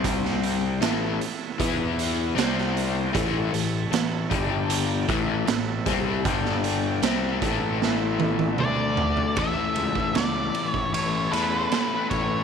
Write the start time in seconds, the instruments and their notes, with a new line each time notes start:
Already playing: picked electric bass C2, overdriven electric guitar C3 G3 C4, transistor combo organ G3 C4 C5 G5
0.04 kick, closed hi-hat
0.25 snare
0.43 closed hi-hat
0.81 picked electric bass A1, overdriven electric guitar A2 E3 A3, transistor combo organ E3 C#4 A4 E5, snare, closed hi-hat
1.21 closed hi-hat
1.58 picked electric bass E2, overdriven electric guitar E3 B3 E4, transistor combo organ B3 B4, kick, closed hi-hat
1.99 closed hi-hat
2.35 picked electric bass C2, overdriven electric guitar C3 G3 C4, transistor combo organ G3 C4 C5 G5, snare, closed hi-hat
2.58 snare
2.77 closed hi-hat
3.13 picked electric bass A1, overdriven electric guitar A2 E3 A3, transistor combo organ A3 E4 C#5 A5, kick, closed hi-hat
3.52 picked electric bass A1, overdriven electric guitar A2 E3, closed hi-hat
3.91 picked electric bass A1, overdriven electric guitar A2 E3, snare, closed hi-hat
4.29 picked electric bass G1, overdriven electric guitar G2 D3 G3, transistor combo organ G3 D4 D5 G5, kick, closed hi-hat
4.70 closed hi-hat
5.08 picked electric bass A1, overdriven electric guitar A2 E3 A3, transistor combo organ A3 E4 E5 A5, kick, closed hi-hat
5.47 picked electric bass A1, overdriven electric guitar A2 E3, snare, closed hi-hat
5.86 picked electric bass C2, overdriven electric guitar C3 G3 C4, kick, snare, closed hi-hat
6.25 picked electric bass G1, overdriven electric guitar G2 D3 G3, transistor combo organ G3 D4 D5 G5, kick, closed hi-hat
6.45 snare
6.64 closed hi-hat
7.02 picked electric bass C2, overdriven electric guitar C3 G3 C4, transistor combo organ A3 E4 E5 A5, snare, closed hi-hat
7.41 picked electric bass A1, overdriven electric guitar A2 E3 A3, kick, closed hi-hat
7.82 snare
8.20 high tom
8.39 high tom
8.58 picked electric bass D2, overdriven electric guitar D3 A3 D4, transistor combo organ D4 D5, lead electric guitar D5, mid tom
8.97 floor tom
9.17 floor tom
9.36 picked electric bass A1, overdriven electric guitar A2 E3 A3 C#4 E4 A4, transistor combo organ A3 E4 E5 A5, lead electric guitar E5, kick, ride
9.75 picked electric bass C#2, ride
9.95 kick
10.15 picked electric bass C#2, lead electric guitar D5, snare, ride
10.55 ride
10.71 lead electric guitar C#5, kick
10.93 picked electric bass A1, lead electric guitar C#5, ride
11.32 picked electric bass E2, overdriven electric guitar A2 E3 A3 C#4 E4 A4, lead electric guitar B4, ride
11.71 overdriven electric guitar A2 E3 A3 C#4 E4 A4, snare, ride
12.10 picked electric bass A1, lead electric guitar C#5, kick, ride